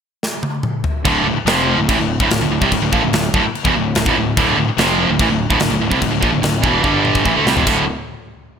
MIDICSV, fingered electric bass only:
0, 0, Header, 1, 3, 480
1, 0, Start_track
1, 0, Key_signature, -1, "minor"
1, 0, Tempo, 413508
1, 1225, Time_signature, 4, 2, 24, 8
1, 9979, End_track
2, 0, Start_track
2, 0, Title_t, "Fingered electric bass"
2, 0, Program_c, 0, 33
2, 1219, Note_on_c, 0, 26, 93
2, 1443, Note_off_c, 0, 26, 0
2, 1450, Note_on_c, 0, 26, 74
2, 1559, Note_off_c, 0, 26, 0
2, 1684, Note_on_c, 0, 29, 92
2, 2031, Note_off_c, 0, 29, 0
2, 2063, Note_on_c, 0, 26, 80
2, 2177, Note_off_c, 0, 26, 0
2, 2190, Note_on_c, 0, 33, 87
2, 2280, Note_off_c, 0, 33, 0
2, 2287, Note_on_c, 0, 26, 80
2, 2521, Note_off_c, 0, 26, 0
2, 2554, Note_on_c, 0, 26, 97
2, 2647, Note_off_c, 0, 26, 0
2, 2654, Note_on_c, 0, 26, 79
2, 2773, Note_off_c, 0, 26, 0
2, 2791, Note_on_c, 0, 26, 87
2, 2895, Note_off_c, 0, 26, 0
2, 2902, Note_on_c, 0, 26, 77
2, 3018, Note_off_c, 0, 26, 0
2, 3037, Note_on_c, 0, 36, 90
2, 3146, Note_off_c, 0, 36, 0
2, 3155, Note_on_c, 0, 26, 85
2, 3265, Note_off_c, 0, 26, 0
2, 3277, Note_on_c, 0, 26, 74
2, 3386, Note_off_c, 0, 26, 0
2, 3395, Note_on_c, 0, 34, 88
2, 3505, Note_off_c, 0, 34, 0
2, 3511, Note_on_c, 0, 26, 77
2, 3623, Note_off_c, 0, 26, 0
2, 3631, Note_on_c, 0, 26, 78
2, 3855, Note_off_c, 0, 26, 0
2, 3875, Note_on_c, 0, 26, 95
2, 3980, Note_off_c, 0, 26, 0
2, 4241, Note_on_c, 0, 28, 97
2, 4340, Note_off_c, 0, 28, 0
2, 4347, Note_on_c, 0, 26, 73
2, 4572, Note_off_c, 0, 26, 0
2, 4585, Note_on_c, 0, 26, 83
2, 4700, Note_off_c, 0, 26, 0
2, 4714, Note_on_c, 0, 26, 97
2, 4816, Note_off_c, 0, 26, 0
2, 4823, Note_on_c, 0, 26, 81
2, 5050, Note_off_c, 0, 26, 0
2, 5075, Note_on_c, 0, 26, 93
2, 5296, Note_off_c, 0, 26, 0
2, 5311, Note_on_c, 0, 26, 76
2, 5422, Note_off_c, 0, 26, 0
2, 5549, Note_on_c, 0, 29, 101
2, 5883, Note_off_c, 0, 29, 0
2, 5920, Note_on_c, 0, 26, 74
2, 6026, Note_off_c, 0, 26, 0
2, 6034, Note_on_c, 0, 33, 79
2, 6143, Note_off_c, 0, 33, 0
2, 6150, Note_on_c, 0, 26, 81
2, 6372, Note_off_c, 0, 26, 0
2, 6386, Note_on_c, 0, 26, 94
2, 6498, Note_off_c, 0, 26, 0
2, 6505, Note_on_c, 0, 26, 81
2, 6618, Note_off_c, 0, 26, 0
2, 6629, Note_on_c, 0, 26, 83
2, 6726, Note_off_c, 0, 26, 0
2, 6733, Note_on_c, 0, 26, 83
2, 6851, Note_off_c, 0, 26, 0
2, 6866, Note_on_c, 0, 36, 102
2, 6978, Note_off_c, 0, 36, 0
2, 6988, Note_on_c, 0, 26, 84
2, 7098, Note_off_c, 0, 26, 0
2, 7112, Note_on_c, 0, 26, 72
2, 7216, Note_off_c, 0, 26, 0
2, 7223, Note_on_c, 0, 34, 83
2, 7335, Note_off_c, 0, 34, 0
2, 7342, Note_on_c, 0, 26, 79
2, 7455, Note_off_c, 0, 26, 0
2, 7465, Note_on_c, 0, 26, 82
2, 7688, Note_off_c, 0, 26, 0
2, 7701, Note_on_c, 0, 28, 93
2, 7925, Note_off_c, 0, 28, 0
2, 7942, Note_on_c, 0, 31, 84
2, 8388, Note_off_c, 0, 31, 0
2, 8424, Note_on_c, 0, 33, 100
2, 8534, Note_off_c, 0, 33, 0
2, 8552, Note_on_c, 0, 38, 102
2, 8658, Note_off_c, 0, 38, 0
2, 8667, Note_on_c, 0, 36, 96
2, 8776, Note_off_c, 0, 36, 0
2, 8781, Note_on_c, 0, 29, 92
2, 8892, Note_off_c, 0, 29, 0
2, 8898, Note_on_c, 0, 26, 95
2, 9122, Note_off_c, 0, 26, 0
2, 9979, End_track
3, 0, Start_track
3, 0, Title_t, "Muted fingered electric bass strokes"
3, 1566, Note_on_c, 9, 29, 39
3, 1682, Note_off_c, 9, 29, 0
3, 3987, Note_on_c, 9, 29, 42
3, 4104, Note_off_c, 9, 29, 0
3, 5437, Note_on_c, 9, 29, 42
3, 5553, Note_off_c, 9, 29, 0
3, 9979, End_track
0, 0, End_of_file